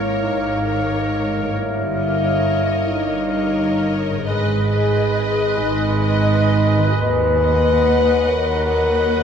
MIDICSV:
0, 0, Header, 1, 11, 480
1, 0, Start_track
1, 0, Key_signature, 5, "minor"
1, 0, Tempo, 872093
1, 848, Time_signature, 6, 3, 24, 8
1, 1331, Tempo, 899550
1, 1811, Tempo, 958466
1, 2291, Tempo, 882353
1, 3251, Tempo, 921659
1, 3731, Tempo, 860832
1, 4995, End_track
2, 0, Start_track
2, 0, Title_t, "Violin section"
2, 0, Program_c, 0, 48
2, 0, Note_on_c, 0, 73, 40
2, 356, Note_off_c, 0, 73, 0
2, 371, Note_on_c, 0, 73, 38
2, 840, Note_off_c, 0, 73, 0
2, 1092, Note_on_c, 0, 75, 50
2, 1797, Note_off_c, 0, 75, 0
2, 1810, Note_on_c, 0, 75, 45
2, 2281, Note_off_c, 0, 75, 0
2, 2286, Note_on_c, 0, 75, 41
2, 2522, Note_off_c, 0, 75, 0
2, 2529, Note_on_c, 0, 75, 48
2, 3232, Note_off_c, 0, 75, 0
2, 3247, Note_on_c, 0, 75, 51
2, 3719, Note_off_c, 0, 75, 0
2, 3982, Note_on_c, 0, 78, 55
2, 4680, Note_off_c, 0, 78, 0
2, 4686, Note_on_c, 0, 78, 50
2, 4995, Note_off_c, 0, 78, 0
2, 4995, End_track
3, 0, Start_track
3, 0, Title_t, "Violin section"
3, 0, Program_c, 1, 48
3, 0, Note_on_c, 1, 73, 42
3, 353, Note_off_c, 1, 73, 0
3, 368, Note_on_c, 1, 73, 42
3, 838, Note_off_c, 1, 73, 0
3, 1087, Note_on_c, 1, 73, 43
3, 1795, Note_off_c, 1, 73, 0
3, 1816, Note_on_c, 1, 73, 49
3, 2284, Note_off_c, 1, 73, 0
3, 2284, Note_on_c, 1, 75, 44
3, 2520, Note_off_c, 1, 75, 0
3, 2526, Note_on_c, 1, 75, 49
3, 3231, Note_off_c, 1, 75, 0
3, 3240, Note_on_c, 1, 75, 48
3, 3715, Note_off_c, 1, 75, 0
3, 3969, Note_on_c, 1, 75, 55
3, 4674, Note_off_c, 1, 75, 0
3, 4684, Note_on_c, 1, 75, 53
3, 4995, Note_off_c, 1, 75, 0
3, 4995, End_track
4, 0, Start_track
4, 0, Title_t, "Flute"
4, 0, Program_c, 2, 73
4, 0, Note_on_c, 2, 73, 45
4, 2116, Note_off_c, 2, 73, 0
4, 2299, Note_on_c, 2, 75, 52
4, 4995, Note_off_c, 2, 75, 0
4, 4995, End_track
5, 0, Start_track
5, 0, Title_t, "Viola section"
5, 0, Program_c, 3, 48
5, 0, Note_on_c, 3, 70, 39
5, 347, Note_off_c, 3, 70, 0
5, 360, Note_on_c, 3, 70, 38
5, 834, Note_off_c, 3, 70, 0
5, 1081, Note_on_c, 3, 70, 43
5, 1792, Note_off_c, 3, 70, 0
5, 1801, Note_on_c, 3, 70, 41
5, 2276, Note_off_c, 3, 70, 0
5, 2291, Note_on_c, 3, 71, 46
5, 2529, Note_off_c, 3, 71, 0
5, 2536, Note_on_c, 3, 71, 50
5, 3236, Note_off_c, 3, 71, 0
5, 3248, Note_on_c, 3, 71, 46
5, 3720, Note_off_c, 3, 71, 0
5, 3968, Note_on_c, 3, 71, 51
5, 4673, Note_off_c, 3, 71, 0
5, 4685, Note_on_c, 3, 71, 49
5, 4995, Note_off_c, 3, 71, 0
5, 4995, End_track
6, 0, Start_track
6, 0, Title_t, "Oboe"
6, 0, Program_c, 4, 68
6, 0, Note_on_c, 4, 70, 43
6, 2109, Note_off_c, 4, 70, 0
6, 2284, Note_on_c, 4, 71, 51
6, 4995, Note_off_c, 4, 71, 0
6, 4995, End_track
7, 0, Start_track
7, 0, Title_t, "Harp"
7, 0, Program_c, 5, 46
7, 0, Note_on_c, 5, 44, 39
7, 0, Note_on_c, 5, 58, 35
7, 0, Note_on_c, 5, 70, 32
7, 0, Note_on_c, 5, 73, 34
7, 754, Note_on_c, 5, 43, 44
7, 773, Note_off_c, 5, 58, 0
7, 780, Note_on_c, 5, 58, 37
7, 797, Note_off_c, 5, 70, 0
7, 803, Note_on_c, 5, 70, 40
7, 819, Note_off_c, 5, 44, 0
7, 820, Note_off_c, 5, 73, 0
7, 827, Note_on_c, 5, 73, 36
7, 2203, Note_on_c, 5, 44, 51
7, 2224, Note_on_c, 5, 63, 42
7, 2249, Note_on_c, 5, 68, 43
7, 2266, Note_off_c, 5, 43, 0
7, 2271, Note_on_c, 5, 71, 39
7, 2278, Note_off_c, 5, 58, 0
7, 2289, Note_off_c, 5, 70, 0
7, 2300, Note_off_c, 5, 73, 0
7, 3632, Note_on_c, 5, 51, 49
7, 3649, Note_off_c, 5, 63, 0
7, 3655, Note_on_c, 5, 63, 47
7, 3679, Note_on_c, 5, 66, 46
7, 3696, Note_off_c, 5, 71, 0
7, 3702, Note_on_c, 5, 71, 46
7, 3703, Note_off_c, 5, 44, 0
7, 3727, Note_off_c, 5, 68, 0
7, 4995, Note_off_c, 5, 51, 0
7, 4995, Note_off_c, 5, 63, 0
7, 4995, Note_off_c, 5, 66, 0
7, 4995, Note_off_c, 5, 71, 0
7, 4995, End_track
8, 0, Start_track
8, 0, Title_t, "French horn section"
8, 0, Program_c, 6, 60
8, 0, Note_on_c, 6, 64, 63
8, 110, Note_off_c, 6, 64, 0
8, 126, Note_on_c, 6, 63, 70
8, 846, Note_off_c, 6, 63, 0
8, 856, Note_on_c, 6, 64, 61
8, 1570, Note_off_c, 6, 64, 0
8, 1575, Note_on_c, 6, 63, 71
8, 2209, Note_off_c, 6, 63, 0
8, 2295, Note_on_c, 6, 68, 88
8, 2994, Note_off_c, 6, 68, 0
8, 3001, Note_on_c, 6, 63, 75
8, 3727, Note_off_c, 6, 63, 0
8, 3731, Note_on_c, 6, 71, 93
8, 4453, Note_on_c, 6, 70, 90
8, 4454, Note_off_c, 6, 71, 0
8, 4995, Note_off_c, 6, 70, 0
8, 4995, End_track
9, 0, Start_track
9, 0, Title_t, "Bassoon"
9, 0, Program_c, 7, 70
9, 0, Note_on_c, 7, 58, 47
9, 2116, Note_off_c, 7, 58, 0
9, 2290, Note_on_c, 7, 56, 56
9, 4442, Note_on_c, 7, 54, 53
9, 4451, Note_off_c, 7, 56, 0
9, 4995, Note_off_c, 7, 54, 0
9, 4995, End_track
10, 0, Start_track
10, 0, Title_t, "Cello section"
10, 0, Program_c, 8, 48
10, 129, Note_on_c, 8, 44, 56
10, 762, Note_off_c, 8, 44, 0
10, 853, Note_on_c, 8, 43, 51
10, 1485, Note_off_c, 8, 43, 0
10, 1570, Note_on_c, 8, 43, 59
10, 2209, Note_off_c, 8, 43, 0
10, 2297, Note_on_c, 8, 44, 53
10, 2926, Note_off_c, 8, 44, 0
10, 3006, Note_on_c, 8, 44, 65
10, 3646, Note_off_c, 8, 44, 0
10, 3731, Note_on_c, 8, 39, 60
10, 4370, Note_off_c, 8, 39, 0
10, 4451, Note_on_c, 8, 39, 62
10, 4995, Note_off_c, 8, 39, 0
10, 4995, End_track
11, 0, Start_track
11, 0, Title_t, "Double bass section"
11, 0, Program_c, 10, 48
11, 128, Note_on_c, 10, 32, 50
11, 761, Note_off_c, 10, 32, 0
11, 848, Note_on_c, 10, 31, 60
11, 1482, Note_off_c, 10, 31, 0
11, 1568, Note_on_c, 10, 31, 55
11, 2208, Note_off_c, 10, 31, 0
11, 2289, Note_on_c, 10, 32, 62
11, 2922, Note_off_c, 10, 32, 0
11, 2999, Note_on_c, 10, 32, 63
11, 3643, Note_off_c, 10, 32, 0
11, 3728, Note_on_c, 10, 39, 71
11, 4369, Note_off_c, 10, 39, 0
11, 4454, Note_on_c, 10, 39, 61
11, 4995, Note_off_c, 10, 39, 0
11, 4995, End_track
0, 0, End_of_file